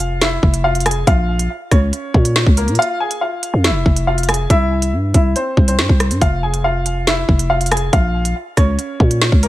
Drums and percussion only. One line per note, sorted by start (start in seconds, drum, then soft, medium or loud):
0.00 closed hi-hat medium
0.21 snare loud
0.21 closed hi-hat medium
0.43 kick medium
0.54 closed hi-hat medium
0.75 closed hi-hat soft
0.80 closed hi-hat medium
0.86 cross-stick loud
0.86 closed hi-hat medium
0.91 closed hi-hat medium
1.07 kick loud
1.07 closed hi-hat medium
1.39 closed hi-hat medium
1.71 kick medium
1.71 cross-stick medium
1.71 closed hi-hat medium
1.93 closed hi-hat medium
2.14 kick loud
2.25 closed hi-hat medium
2.36 snare loud
2.47 kick loud
2.57 closed hi-hat medium
2.68 closed hi-hat soft
2.75 closed hi-hat medium
2.82 closed hi-hat medium
3.11 closed hi-hat medium
3.43 closed hi-hat medium
3.64 snare loud
3.64 closed hi-hat medium
3.86 kick medium
3.96 closed hi-hat medium
4.18 closed hi-hat medium
4.23 closed hi-hat medium
4.29 cross-stick medium
4.29 closed hi-hat medium
4.34 closed hi-hat medium
4.50 kick loud
4.50 closed hi-hat loud
4.82 closed hi-hat medium
5.14 kick loud
5.14 closed hi-hat medium
5.36 closed hi-hat medium
5.57 kick medium
5.68 closed hi-hat medium
5.79 snare loud
5.89 kick loud
6.00 cross-stick loud
6.00 closed hi-hat medium
6.11 closed hi-hat medium
6.21 kick loud
6.21 closed hi-hat loud
6.54 closed hi-hat medium
6.86 closed hi-hat medium
7.07 snare loud
7.07 closed hi-hat medium
7.29 kick medium
7.39 closed hi-hat medium
7.61 closed hi-hat medium
7.66 closed hi-hat medium
7.72 cross-stick loud
7.72 closed hi-hat medium
7.77 closed hi-hat medium
7.93 kick loud
7.93 closed hi-hat loud
8.25 closed hi-hat medium
8.57 kick loud
8.57 cross-stick medium
8.57 closed hi-hat medium
8.79 closed hi-hat medium
9.00 kick medium
9.11 closed hi-hat medium
9.22 snare loud
9.32 kick loud
9.43 closed hi-hat medium